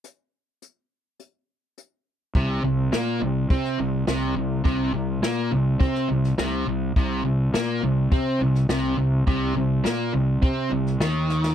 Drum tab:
HH |x---x---x---x---|o---o---o---o---|o---o---o---o---|o---o---o---o---|
SD |----------------|----o----o--o---|----o----o-oo---|----o------oo---|
BD |----------------|o-------o-------|o-------o-------|o-------o-------|

HH |o---o---o-------|
SD |----o------oo-oo|
BD |o-------o-------|